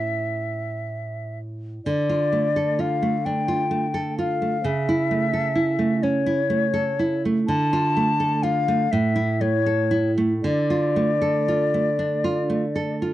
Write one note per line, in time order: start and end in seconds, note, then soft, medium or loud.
0.00 1.78 A2 soft
0.00 1.79 A3 soft
0.00 1.80 C#4 soft
0.00 1.39 E5 medium
1.85 4.62 D3 soft
1.85 2.81 D5 medium
2.09 2.47 F4 soft
2.32 2.70 A3 soft
2.56 2.93 A4 soft
2.79 3.16 F4 soft
2.79 3.26 F5 medium
3.02 3.39 A3 soft
3.25 3.63 D4 soft
3.25 4.17 G5 medium
3.48 3.85 F4 soft
3.71 4.09 A3 soft
3.94 4.32 A4 soft
4.18 4.56 F4 soft
4.18 4.67 F5 medium
4.42 4.65 A3 soft
4.64 7.44 C#3 medium
4.64 6.04 E5 medium
4.89 5.25 E4 soft
5.11 5.48 A3 soft
5.33 5.70 A4 soft
5.55 5.93 E4 soft
5.79 6.16 A3 soft
6.02 6.41 C#4 soft
6.02 7.22 C#5 medium
6.26 6.65 E4 soft
6.50 6.89 A3 soft
6.74 7.14 A4 soft
6.99 7.39 E4 soft
7.25 7.49 A3 soft
7.47 8.87 D3 medium
7.47 8.44 A5 medium
7.73 8.10 F4 medium
7.97 8.34 A3 soft
8.20 8.57 A4 medium
8.42 8.81 F4 medium
8.42 8.93 F5 medium
8.68 8.91 A3 soft
8.91 10.40 A2 medium
8.91 9.42 E5 medium
9.16 9.55 E4 medium
9.41 9.81 A3 soft
9.41 10.11 C#5 medium
9.66 10.07 A4 soft
9.91 10.32 E4 soft
10.18 10.43 A3 soft
10.42 13.13 D3 medium
10.42 12.95 D5 medium
10.70 11.11 F4 soft
10.96 11.37 A3 soft
11.22 11.62 A4 soft
11.48 11.88 F4 soft
11.74 12.13 A3 soft
11.99 12.38 D4 soft
12.24 12.64 F4 soft
12.50 12.90 A3 soft
12.76 13.13 A4 soft
13.02 13.13 F4 soft